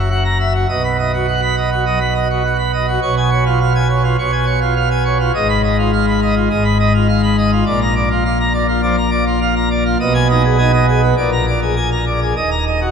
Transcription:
Already playing: F#1 F#2
0.10 F#5
0.25 A#5
0.40 E5
0.55 F#4
0.69 B1 B2 D#5
0.84 B5
0.98 D#5
1.14 F#4
1.28 F#5
1.42 B5
1.57 D#5
1.71 F#4
1.86 F#3 D#5
2.01 B5
2.15 D#5
2.30 F#4
2.44 F#5
2.59 B5
2.73 D#5
2.88 F#4
3.02 B1 B2 C#5
3.17 G#5
3.31 C#5
3.46 F4
3.60 F5
3.75 G#5
3.90 C#5
4.04 F4
4.18 B1 B2 C#5
4.32 G#5
4.46 C#5
4.61 F4
4.76 F5
4.91 G#5
5.05 C#5
5.20 F4
5.35 G#1 G#2 D#5
5.49 B5
5.64 D#5
5.79 F4
5.93 F5
6.08 B5
6.22 D#5
6.36 F4
6.50 G#1 G#2 D#5
6.65 B5
6.80 D#5
6.94 F4
7.08 F5
7.23 B5
7.38 D#5
7.52 F4
7.66 A#1 A#2 D5
7.81 A#5
7.96 D5
8.11 F4
8.25 F5
8.40 A#5
8.53 D5
8.68 F4
8.82 F3 D5
8.97 A#5
9.11 D5
9.27 F4
9.41 F5
9.56 A#5
9.71 D5
9.86 F4
10.00 B1 B2 D#5
10.14 G#5
10.29 D#4 D#5
10.44 G#4
10.58 D#4 G#5
10.73 D#5
10.88 G#4
11.03 B3
11.17 A#1 A#2 D5
11.32 A#5
11.47 D5
11.62 G#4
11.76 G#5
11.92 A#5
12.07 D5
12.22 G#4
12.36 D#1 D#2 D#5
12.51 A#5
12.67 D#5
12.81 F#4

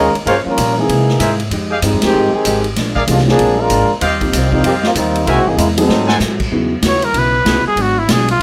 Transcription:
Already playing: D#2 A#2 D#3 G#3 C#4 F4 A#4
0.14 muted upright bass stroke, ride
0.26 G2 F3 G#3 A#3 C#4 F4 G4 A#4 C5 C#5 F5, ride
0.46 F3 G3 A#3 C#4 F4 A#4, muted upright bass stroke
0.58 G2 A#2 F3 A#3 C#4, hi-hat pedal, ride
0.76 E3 G#3 A#3 C4 D#4 G#4
0.88 C3 G#3 A#3 E4, ride
1.09 snare
1.20 G#2 C3 G#3 A#3 E4 G#4 A#4 C5 E5, hi-hat pedal, ride
1.40 ride
1.50 F2 F3 G#3 D#4 G4, ride
1.71 G4 G#4 D#5 F5
1.82 G2 F3 G3 G#3 C4 D#4 G4, hi-hat pedal, ride
1.93 F2
2.02 D#2 D#3 G#3 C4 G4, snare, ride
2.14 G#2 F3 G#3 D#4 G4
2.33 D#3 C4 G4 G#4, muted upright bass stroke
2.45 G#1 F3 G#3 D#4 G4, hi-hat pedal, ride
2.64 ride
2.76 A#1 A#2 F3 G#3 D4, snare, ride
2.96 G#4 A#4 D5 F5, kick
3.07 C2 A#2 E3 F3 G#3 A3 A#3 B3 C#4 D4 F4 G4, hi-hat pedal, ride
3.18 snare
3.27 F3 A#3 C4 D4 G#4, snare
3.38 A#1 A#2 F3 G#3 D4, ride
3.59 G#3 D4 F4 A#4
3.70 G#1 A#2 F3 G#3 D4, hi-hat pedal, ride
3.89 muted upright bass stroke
4.01 D#2 D#3 G3 C4 F4 G4 C5 D#5 F5, ride
4.21 F3 A#3 C4 D#4 G4, kick, ride
4.32 C2 D#3 F3 G3 A#3 C4 F4, hi-hat pedal, ride
4.52 F3 G3 A#3 C4 D#4 F4, kick
4.64 F2 D#3 F3 G3 A#3 C4 F4 G4, ride
4.83 G3 A#3 C4 F4, snare
4.95 D#2 D#3 G3 A#3 C4 D#4 F4, hi-hat pedal, ride
5.15 ride
5.26 C2 C3 D#3 G#3 A#3 C4 E4 F#4 A#4 C5 E5 G#5, ride
5.37 A#1
5.45 G#1 E3 A#3 C4 D#4 G#4
5.57 E2 C3 D#3 G#3 A#3 E4, hi-hat pedal, ride
5.77 F#3 A3 C4 D#4 G#4 A4, ride
5.89 G#2 F#3 A3 C4, snare
6.08 A4 C5 F#5 G#5, snare
6.20 G#2 A2 F#3 A3 C4, snare, hi-hat pedal
6.40 kick, crash
6.51 E2 C#3 F#3 B3 D#4 E4 F#4 G#4
6.82 D#2 C#3 B3 D#4 E4 F#4, snare, hi-hat pedal, ride
6.87 C#5
7.02 A#4, ride
7.13 B1 C#3 B3 E4 F#4, ride
7.18 B4
7.45 C#2 C#3 E3 B3 D#4 E4 F#4 G#4, snare, hi-hat pedal, ride
7.64 G#4, muted upright bass stroke
7.76 G#1 G#2 F#3 B3 D4, ride
7.82 F#4
7.99 E4
8.08 B1 G#2 F#3 B3 D4, snare, hi-hat pedal, ride
8.12 G#4
8.28 F4, ride
8.39 C#2 C#3

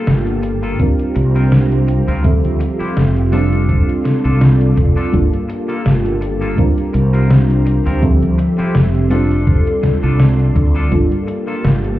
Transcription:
Already playing: G3 A#3 D4 F4 G4 A4 F5 A5
0.07 G1, snare, closed hi-hat
0.27 closed hi-hat
0.43 muted clean electric guitar stroke, closed hi-hat
0.63 A#3 F4 A4, closed hi-hat
0.78 G3 C4 D4 F4 A#4 C5 A#5, kick, closed hi-hat
1.00 closed hi-hat
1.15 C2, muted clean electric guitar stroke, closed hi-hat
1.35 C4 F4 A#4, closed hi-hat
1.52 snare, closed hi-hat
1.72 closed hi-hat
1.88 muted clean electric guitar stroke, closed hi-hat
2.08 D2 C4 F4 A#4, closed hi-hat
2.23 F3 G3 C4 A4 E5 C6, kick, closed hi-hat
2.44 D2, closed hi-hat
2.60 muted clean electric guitar stroke, closed hi-hat
2.79 C4 E4 F4 G4, muted fretless electric bass stroke, closed hi-hat
2.97 F1, snare, closed hi-hat
3.17 closed hi-hat
3.31 G3 C4 D4 F4 A4 D5 C6, closed hi-hat
3.53 closed hi-hat
3.69 kick, closed hi-hat
3.89 closed hi-hat
4.05 muted clean electric guitar stroke, snare, closed hi-hat
4.24 C2 D4 F4 A4, closed hi-hat
4.41 snare, closed hi-hat
4.61 closed hi-hat
4.76 F1, muted clean electric guitar stroke, kick, closed hi-hat
4.96 D4 F4 A4, closed hi-hat
5.12 G1 G3 A#3 D4 F4 G4 A4 A5, kick, closed hi-hat
5.34 closed hi-hat
5.49 muted clean electric guitar stroke, closed hi-hat
5.68 A#3 F4 A4, closed hi-hat
5.86 G1, snare, closed hi-hat
6.06 closed hi-hat
6.21 muted clean electric guitar stroke, closed hi-hat
6.41 A#3 F4 A4, closed hi-hat
6.56 G3 C4 D4 F4 A#4 C5 A#5, kick, closed hi-hat
6.78 closed hi-hat
6.93 C2, muted clean electric guitar stroke, closed hi-hat
7.13 C4 F4 A#4, closed hi-hat
7.31 snare, closed hi-hat
7.50 closed hi-hat
7.66 muted clean electric guitar stroke, closed hi-hat
7.86 D2 C4 F4 A#4, closed hi-hat
8.01 F3 G3 C4 A4 E5 C6, kick, closed hi-hat
8.22 D2, closed hi-hat
8.38 muted clean electric guitar stroke, closed hi-hat
8.58 C4 E4 F4 G4, muted fretless electric bass stroke, closed hi-hat
8.75 F1, snare, closed hi-hat
8.95 closed hi-hat
9.09 G3 C4 D4 F4 A4 D5, closed hi-hat
9.31 closed hi-hat
9.47 kick, closed hi-hat
9.67 closed hi-hat
9.83 muted clean electric guitar stroke, kick, snare, closed hi-hat
10.03 C2 D4 F4 A4, closed hi-hat
10.20 snare, closed hi-hat
10.39 closed hi-hat
10.56 D2, muted clean electric guitar stroke, kick, closed hi-hat
10.75 D4 F4 A4, closed hi-hat
10.90 G1 G3 A#3 D4 F4 G4 A4 A5, kick, closed hi-hat
11.12 closed hi-hat
11.27 muted clean electric guitar stroke, closed hi-hat
11.47 A#3 F4 A4, closed hi-hat
11.64 G1, snare, closed hi-hat
11.84 closed hi-hat

